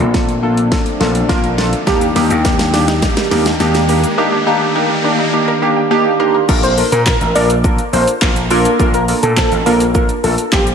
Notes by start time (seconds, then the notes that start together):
Already playing: A3 C4 D4, riser
0.00 A#1, closed hi-hat
0.14 A#3 D4 F4 A4, kick, snare, closed hi-hat
0.29 closed hi-hat
0.43 A#3 D4 F4 A4
0.57 closed hi-hat
0.71 A#3 D4 F4 A4, kick, snare, closed hi-hat
0.86 closed hi-hat
1.00 A#1 A#3 D4 F4 A4, snare
1.15 closed hi-hat
1.29 A#1 A#3 D4 F4 A#4, kick, snare, closed hi-hat
1.44 closed hi-hat
1.58 A#3 D4 F4 A4, snare
1.73 closed hi-hat
1.87 D#2 A#3 D4 D#4 G4, kick, snare, closed hi-hat, shaker
2.01 D4, closed hi-hat, shaker
2.16 D#2 A#3 D4 D#4 G4, snare, open hi-hat, shaker
2.30 D#2 G4, closed hi-hat, shaker
2.45 A#3 D4 D#4 G4 A#4, kick, snare, closed hi-hat, shaker
2.59 A#3, snare, closed hi-hat, shaker
2.74 A#3 D4 D#4 G4, snare, open hi-hat, shaker
2.88 D#4, snare, closed hi-hat, shaker
3.02 A#3 D4 D#4 G4, kick, snare, closed hi-hat, shaker
3.17 A#4, snare, closed hi-hat, shaker
3.31 D#2 A#3 D4 D#4 G4, snare, open hi-hat, shaker
3.46 snare, closed hi-hat, shaker
3.60 D#2 A#3 D4 D#4 G4, snare, closed hi-hat, shaker
3.75 snare, closed hi-hat, shaker
3.89 A#3 D4 D#4 G4 A#4, open hi-hat, shaker
4.03 A#3, closed hi-hat, shaker
4.18 A#3 D4 D#4 G4
4.32 D4
4.46 A#3 D4 D#4 G4
4.61 G4
4.75 A#3 D4 D#4 G4 A#4
4.90 A#3
5.04 A#3 D4 D#4 G4
5.19 D#4
5.33 A#3 D4 D#4 G4
5.48 A#4
5.62 A#3 D4 D#4 G4 F5
5.77 G5
5.91 A#3 D4 D#4 G4 A#5
6.19 A#3 D4 D#4 G4 A#4 C6
6.34 A#3
6.48 A#1 A#3 D4 F4 A4 A#4, kick, crash, shaker
6.63 C5, closed hi-hat, shaker
6.77 A#3 D4 F4 A4 A#4, open hi-hat, shaker
6.92 A#2 A#4, closed hi-hat, shaker
7.06 A#3 D4 F4 A4 A#4, kick, snare, clap, shaker
7.21 A1, closed hi-hat, shaker
7.35 A#1 A#3 D4 F4 A4 A#4 D5, open hi-hat, shaker
7.50 closed hi-hat, shaker
7.64 A#3 D4 F4 A4 A#4, kick, shaker
7.78 closed hi-hat, shaker
7.93 A#1 A#3 D4 F4 A4 A#4 C5, open hi-hat, shaker
8.08 closed hi-hat, shaker
8.22 A#1 A#3 D4 F4 A4 A#4, kick, snare, clap, shaker
8.36 closed hi-hat, shaker
8.50 A#3 D4 F4 A4 A#4, open hi-hat, shaker
8.65 closed hi-hat, shaker
8.79 A#1 A#3 D4 F4 A4 A#4, kick, shaker
8.94 A#4, closed hi-hat, shaker
9.08 A#3 D4 F4 A4 A#4, open hi-hat, shaker
9.23 A#2 A4, closed hi-hat, shaker
9.37 A#3 D4 F4 A4 C5, kick, snare, clap, shaker
9.52 A1, closed hi-hat, shaker
9.66 A#1 A#3 D4 F4 A4 A#4, open hi-hat, shaker
9.80 closed hi-hat, shaker
9.95 A#3 D4 F4 A4 A#4, kick, shaker
10.09 closed hi-hat, shaker
10.23 A#1 A#3 D4 F4 A4 A#4, open hi-hat, shaker
10.38 closed hi-hat, shaker
10.52 A#1 A#3 D4 F4 G4 A4 C5, kick, snare, clap, shaker
10.67 closed hi-hat, shaker